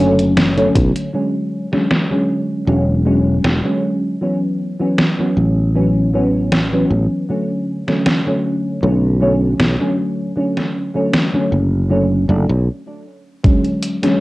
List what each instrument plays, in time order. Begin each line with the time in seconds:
Already playing: fretless electric bass F#1, fm electric piano D3
0.00 fm electric piano F#3 A3 C#4
0.19 closed hi-hat
0.37 snare, closed hi-hat
0.56 fm electric piano D3 F#3 A3 C#4, closed hi-hat
0.75 fretless electric bass B1, kick, closed hi-hat
0.96 closed hi-hat
1.13 fm electric piano D3 F#3 G#3 C#4
1.72 fm electric piano D3 F#3 G#3 C#4, snare
1.91 snare
2.10 fm electric piano D3 F#3 G#3 C#4
2.67 fretless electric bass E1, fm electric piano D3 F#3 G#3 C#4
3.05 fm electric piano D3 F#3 G#3 C#4
3.44 fretless electric bass E1, snare
3.64 fm electric piano D3 F#3 G#3 C#4
4.21 fm electric piano E3 F#3 B3 C#4
4.80 fm electric piano E3 F#3 B3 C#4
4.98 snare
5.19 fm electric piano E3 F#3 B3 C#4
5.37 fretless electric bass A1
5.75 fm electric piano E3 F#3 B3 C#4
6.14 fm electric piano E3 F#3 B3 C#4
6.52 snare
6.72 fm electric piano E3 F#3 B3 C#4
6.90 fretless electric bass A1
7.29 fm electric piano D3 F#3 A3 C#4
7.87 fm electric piano D3 F#3 A3 C#4, snare
8.06 snare
8.26 fm electric piano D3 F#3 A3 C#4
8.82 fretless electric bass B1, fm electric piano D3 F#3 A3 C#4
9.20 fm electric piano D3 F#3 A3 C#4
9.60 fretless electric bass B1, snare
9.79 fm electric piano D3 F#3 A3 C#4
10.36 fm electric piano D3 F#3 A3 C#4
10.57 snare
10.94 fm electric piano D3 F#3 A3 C#4
11.14 snare
11.33 fm electric piano D3 F#3 A3 C#4
11.52 fretless electric bass F#1
11.90 fm electric piano D3 F#3 A3 C#4
12.28 fretless electric bass F#1, fm electric piano D3 F#3 A3 D4
12.50 fretless electric bass B1
13.44 fm electric piano D3 F#3 G#3 C#4, kick, closed hi-hat
13.65 closed hi-hat
13.83 closed hi-hat
14.02 fm electric piano D3 F#3 G#3 C#4, snare, closed hi-hat